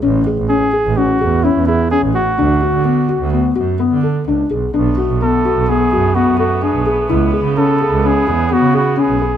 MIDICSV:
0, 0, Header, 1, 5, 480
1, 0, Start_track
1, 0, Tempo, 471328
1, 30, Time_signature, 5, 2, 24, 8
1, 9545, End_track
2, 0, Start_track
2, 0, Title_t, "Flugelhorn"
2, 0, Program_c, 0, 56
2, 502, Note_on_c, 0, 68, 95
2, 994, Note_on_c, 0, 66, 87
2, 1009, Note_off_c, 0, 68, 0
2, 1465, Note_on_c, 0, 64, 77
2, 1480, Note_off_c, 0, 66, 0
2, 1693, Note_off_c, 0, 64, 0
2, 1699, Note_on_c, 0, 64, 78
2, 1927, Note_off_c, 0, 64, 0
2, 1949, Note_on_c, 0, 68, 86
2, 2057, Note_off_c, 0, 68, 0
2, 2192, Note_on_c, 0, 66, 80
2, 3590, Note_off_c, 0, 66, 0
2, 5319, Note_on_c, 0, 69, 87
2, 5799, Note_on_c, 0, 68, 97
2, 5815, Note_off_c, 0, 69, 0
2, 6261, Note_on_c, 0, 66, 83
2, 6276, Note_off_c, 0, 68, 0
2, 6500, Note_off_c, 0, 66, 0
2, 6506, Note_on_c, 0, 66, 77
2, 6748, Note_on_c, 0, 68, 73
2, 6763, Note_off_c, 0, 66, 0
2, 7228, Note_off_c, 0, 68, 0
2, 7713, Note_on_c, 0, 69, 91
2, 8215, Note_on_c, 0, 68, 94
2, 8230, Note_off_c, 0, 69, 0
2, 8686, Note_on_c, 0, 66, 84
2, 8702, Note_off_c, 0, 68, 0
2, 8917, Note_off_c, 0, 66, 0
2, 8927, Note_on_c, 0, 66, 81
2, 9159, Note_on_c, 0, 68, 81
2, 9174, Note_off_c, 0, 66, 0
2, 9545, Note_off_c, 0, 68, 0
2, 9545, End_track
3, 0, Start_track
3, 0, Title_t, "Felt piano"
3, 0, Program_c, 1, 0
3, 26, Note_on_c, 1, 61, 83
3, 204, Note_off_c, 1, 61, 0
3, 272, Note_on_c, 1, 68, 59
3, 449, Note_off_c, 1, 68, 0
3, 502, Note_on_c, 1, 61, 75
3, 682, Note_off_c, 1, 61, 0
3, 745, Note_on_c, 1, 68, 69
3, 924, Note_off_c, 1, 68, 0
3, 993, Note_on_c, 1, 61, 75
3, 1169, Note_off_c, 1, 61, 0
3, 1229, Note_on_c, 1, 68, 71
3, 1407, Note_off_c, 1, 68, 0
3, 1469, Note_on_c, 1, 61, 86
3, 1647, Note_off_c, 1, 61, 0
3, 1714, Note_on_c, 1, 68, 65
3, 1890, Note_off_c, 1, 68, 0
3, 1954, Note_on_c, 1, 61, 73
3, 2129, Note_off_c, 1, 61, 0
3, 2186, Note_on_c, 1, 66, 69
3, 2365, Note_off_c, 1, 66, 0
3, 2427, Note_on_c, 1, 62, 87
3, 2605, Note_off_c, 1, 62, 0
3, 2674, Note_on_c, 1, 66, 65
3, 2850, Note_off_c, 1, 66, 0
3, 2901, Note_on_c, 1, 59, 69
3, 3082, Note_off_c, 1, 59, 0
3, 3145, Note_on_c, 1, 66, 63
3, 3324, Note_off_c, 1, 66, 0
3, 3391, Note_on_c, 1, 59, 74
3, 3568, Note_off_c, 1, 59, 0
3, 3622, Note_on_c, 1, 66, 66
3, 3802, Note_off_c, 1, 66, 0
3, 3865, Note_on_c, 1, 59, 82
3, 4044, Note_off_c, 1, 59, 0
3, 4107, Note_on_c, 1, 69, 61
3, 4285, Note_off_c, 1, 69, 0
3, 4355, Note_on_c, 1, 62, 75
3, 4530, Note_off_c, 1, 62, 0
3, 4589, Note_on_c, 1, 68, 63
3, 4766, Note_off_c, 1, 68, 0
3, 4825, Note_on_c, 1, 62, 85
3, 5004, Note_off_c, 1, 62, 0
3, 5068, Note_on_c, 1, 66, 64
3, 5245, Note_off_c, 1, 66, 0
3, 5312, Note_on_c, 1, 59, 67
3, 5488, Note_off_c, 1, 59, 0
3, 5551, Note_on_c, 1, 66, 71
3, 5728, Note_off_c, 1, 66, 0
3, 5789, Note_on_c, 1, 59, 73
3, 5966, Note_off_c, 1, 59, 0
3, 6036, Note_on_c, 1, 66, 66
3, 6211, Note_off_c, 1, 66, 0
3, 6268, Note_on_c, 1, 59, 83
3, 6446, Note_off_c, 1, 59, 0
3, 6511, Note_on_c, 1, 69, 68
3, 6688, Note_off_c, 1, 69, 0
3, 6751, Note_on_c, 1, 62, 73
3, 6927, Note_off_c, 1, 62, 0
3, 6990, Note_on_c, 1, 68, 65
3, 7166, Note_off_c, 1, 68, 0
3, 7227, Note_on_c, 1, 64, 83
3, 7405, Note_off_c, 1, 64, 0
3, 7466, Note_on_c, 1, 68, 67
3, 7644, Note_off_c, 1, 68, 0
3, 7715, Note_on_c, 1, 61, 70
3, 7890, Note_off_c, 1, 61, 0
3, 7953, Note_on_c, 1, 68, 68
3, 8129, Note_off_c, 1, 68, 0
3, 8194, Note_on_c, 1, 61, 73
3, 8369, Note_off_c, 1, 61, 0
3, 8430, Note_on_c, 1, 68, 71
3, 8606, Note_off_c, 1, 68, 0
3, 8665, Note_on_c, 1, 59, 83
3, 8843, Note_off_c, 1, 59, 0
3, 8903, Note_on_c, 1, 68, 66
3, 9082, Note_off_c, 1, 68, 0
3, 9136, Note_on_c, 1, 61, 76
3, 9317, Note_off_c, 1, 61, 0
3, 9384, Note_on_c, 1, 68, 71
3, 9545, Note_off_c, 1, 68, 0
3, 9545, End_track
4, 0, Start_track
4, 0, Title_t, "Woodwind section"
4, 0, Program_c, 2, 71
4, 4831, Note_on_c, 2, 57, 62
4, 4831, Note_on_c, 2, 59, 68
4, 4833, Note_on_c, 2, 50, 62
4, 7205, Note_off_c, 2, 57, 0
4, 7206, Note_off_c, 2, 50, 0
4, 7225, Note_on_c, 2, 49, 65
4, 7225, Note_on_c, 2, 64, 73
4, 9545, Note_off_c, 2, 49, 0
4, 9545, Note_off_c, 2, 59, 0
4, 9545, Note_off_c, 2, 64, 0
4, 9545, End_track
5, 0, Start_track
5, 0, Title_t, "Double bass"
5, 0, Program_c, 3, 43
5, 26, Note_on_c, 3, 33, 102
5, 238, Note_off_c, 3, 33, 0
5, 386, Note_on_c, 3, 33, 81
5, 598, Note_off_c, 3, 33, 0
5, 873, Note_on_c, 3, 33, 88
5, 1082, Note_off_c, 3, 33, 0
5, 1235, Note_on_c, 3, 40, 84
5, 1548, Note_off_c, 3, 40, 0
5, 1593, Note_on_c, 3, 40, 85
5, 2012, Note_off_c, 3, 40, 0
5, 2069, Note_on_c, 3, 33, 78
5, 2280, Note_off_c, 3, 33, 0
5, 2431, Note_on_c, 3, 38, 94
5, 2746, Note_off_c, 3, 38, 0
5, 2798, Note_on_c, 3, 50, 77
5, 3215, Note_off_c, 3, 50, 0
5, 3268, Note_on_c, 3, 38, 95
5, 3584, Note_off_c, 3, 38, 0
5, 3630, Note_on_c, 3, 42, 78
5, 3945, Note_off_c, 3, 42, 0
5, 3994, Note_on_c, 3, 50, 83
5, 4307, Note_off_c, 3, 50, 0
5, 4358, Note_on_c, 3, 37, 71
5, 4570, Note_off_c, 3, 37, 0
5, 4597, Note_on_c, 3, 35, 75
5, 4810, Note_off_c, 3, 35, 0
5, 4832, Note_on_c, 3, 35, 105
5, 5041, Note_off_c, 3, 35, 0
5, 5189, Note_on_c, 3, 35, 86
5, 5399, Note_off_c, 3, 35, 0
5, 5667, Note_on_c, 3, 35, 87
5, 5878, Note_off_c, 3, 35, 0
5, 6023, Note_on_c, 3, 42, 81
5, 6341, Note_off_c, 3, 42, 0
5, 6383, Note_on_c, 3, 42, 77
5, 6806, Note_off_c, 3, 42, 0
5, 6855, Note_on_c, 3, 35, 81
5, 7071, Note_off_c, 3, 35, 0
5, 7216, Note_on_c, 3, 37, 96
5, 7537, Note_off_c, 3, 37, 0
5, 7575, Note_on_c, 3, 49, 84
5, 8002, Note_off_c, 3, 49, 0
5, 8056, Note_on_c, 3, 37, 94
5, 8377, Note_off_c, 3, 37, 0
5, 8421, Note_on_c, 3, 40, 85
5, 8739, Note_off_c, 3, 40, 0
5, 8777, Note_on_c, 3, 49, 80
5, 9202, Note_off_c, 3, 49, 0
5, 9255, Note_on_c, 3, 35, 79
5, 9545, Note_off_c, 3, 35, 0
5, 9545, End_track
0, 0, End_of_file